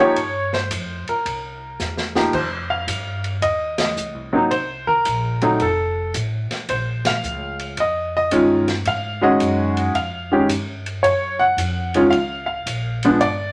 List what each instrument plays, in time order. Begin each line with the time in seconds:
Already playing: grand piano F3
0.00 grand piano A#3 D#4 G4 C#5
0.16 upright bass G2, ride
0.53 grand piano C5, snare
0.71 upright bass F2, hi-hat pedal, ride
1.07 grand piano A#4, muted upright bass stroke, ride
1.25 upright bass C2, ride
1.80 upright bass E2, snare, hi-hat pedal
1.97 snare
2.15 grand piano F3 A#3 D#4 G4, snare
2.33 upright bass F2, grand piano C5, kick, crash
2.70 grand piano F5
2.87 upright bass G2, hi-hat pedal, ride
3.24 ride
3.41 upright bass D#2, grand piano D#5, ride
3.78 grand piano D#5, snare, ride
3.97 upright bass C#2, hi-hat pedal
4.14 upright bass C2
4.33 upright bass G#1, grand piano F#3 A#3 C4 D#4
4.51 upright bass C2, grand piano C5, ride
4.87 grand piano A#4, kick
5.05 upright bass A#1, hi-hat pedal, ride
5.42 grand piano F#3 A3 C4 D#4, ride
5.60 upright bass F1, grand piano A4, ride
6.14 upright bass A1, hi-hat pedal, ride
6.51 snare, ride
6.69 upright bass A#1, grand piano C5, ride
7.05 grand piano F5, snare, ride
7.23 upright bass C#2, hi-hat pedal
7.59 ride
7.77 upright bass F2, grand piano D#5, ride
8.17 grand piano D#5
8.31 upright bass G2, grand piano D#3 G#3 C#4 F4, hi-hat pedal, ride
8.68 snare, ride
8.85 upright bass G#2, grand piano F5, ride
9.21 grand piano D#3 G#3 C#4 F#4 D#5
9.40 upright bass F#2, hi-hat pedal, ride
9.77 ride
9.94 upright bass F2, grand piano F5, ride
10.32 grand piano D#3 G#3 C#4 G4
10.48 upright bass G2, hi-hat pedal, ride
10.86 ride
11.03 upright bass F#2, grand piano C#5, ride
11.39 grand piano F#5
11.57 upright bass F2, hi-hat pedal, ride
11.94 grand piano D#3 G#3 C#4 F4, ride
12.10 upright bass C#2, grand piano F5, ride
12.46 grand piano F5
12.66 upright bass A#1, hi-hat pedal, ride
13.03 grand piano F3 G#3 B3 D4, ride
13.21 upright bass G1, grand piano D5, ride